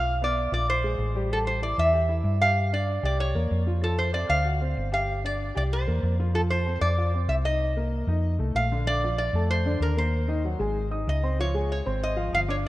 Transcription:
Already playing: B1 F4 F5
0.21 B3 B4 D5
0.52 A#1 F4 D5 F5
0.70 C5
0.84 G#3 G#4
0.98 A1
1.15 G3 G4
1.31 G3 G4 A4
1.47 C5
1.62 E4 D5 E5
1.78 E2 E5
1.93 G4 G5
2.09 E4 E5
2.24 G2
2.41 G4 F5 G5
2.72 D4 D5
3.03 C2 G4 D5 G5
3.20 C#5
3.35 E2 A#3 A#4
3.51 F2
3.67 F3 F4
3.82 F3 F4 A4
3.99 C5
4.13 C4 C5 D5
4.29 D2 F5
4.45 F#4 F#5
4.61 C4 C5
4.77 G1
4.92 G4 F5 G5
5.24 D4 D5
5.55 C2 G4 D5 G5
5.73 C5
5.87 E2 A#3 A#4
6.03 F2
6.20 F3 F4
6.34 F3 F4 A4
6.50 C5
6.66 C4 C5
6.81 F2 D5
6.98 F4 F5
7.14 C4 C5
7.28 C2 E5
7.45 D#4 D#5
7.77 A#3 A#4
8.07 F2 D#4 D#5
8.39 C2 A3 A4
8.55 A#1 F5
8.72 D3 D4
8.87 D3 D4 D5
9.04 F3 F4 F5
9.18 D5
9.33 F2 A3 A4 A5
9.51 C5
9.66 D3 D4 D5
9.80 D#2 A#4
9.97 A#3 A#4 C5 A#5
10.28 D#3 D#4 D#5
10.44 F#3 F#4 F#5
10.59 G#1 G#3 G#4 G#5
10.91 D#4 D#5 D#6
11.07 C#2 D#5
11.23 C4 C5 C6
11.39 F3 F4 C#5 F5
11.54 G#3 G#4 G#5
11.72 C#5
11.86 G#1 C4 C5 C6
12.04 D#5
12.16 F3 F4 F5
12.33 G1 F5
12.48 D4 C#5 D5 D6

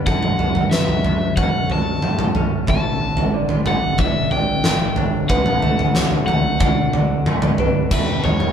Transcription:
0.06 F#2 A4 F#5, kick, floor tom
0.23 mid tom
0.39 C#3, floor tom
0.55 floor tom
0.71 F#3 B4 E5, snare
0.88 floor tom
1.04 A3, floor tom
1.37 C#4 C#5 F#5, kick, floor tom
1.70 F#3 C#5 A5, floor tom
2.02 A3, mid tom
2.19 floor tom, mid tom
2.35 C#4 A4, floor tom
2.67 A1 A2 E5 A5, kick, floor tom
3.02 D3
3.17 floor tom
3.34 D3 D5
3.49 floor tom
3.66 A3 F#5, floor tom, mid tom
3.98 D4 E5, kick, floor tom
4.31 D3 D5 G5, floor tom
4.64 A3, snare, mid tom
4.96 D4 C#5, floor tom
5.29 D2 D3 B4 F#5, kick, floor tom
5.46 mid tom
5.62 A3, floor tom
5.79 floor tom
5.95 D3 C#5, snare
6.11 floor tom
6.26 A3 F#5, floor tom
6.60 D4 D5, kick, floor tom
6.93 D3 D5, floor tom
7.26 A3, mid tom
7.42 floor tom, mid tom
7.58 D4 B4, floor tom
7.91 E2 B4 E5, kick, floor tom, crash
8.24 E2 C#5, floor tom, mid tom
8.40 mid tom

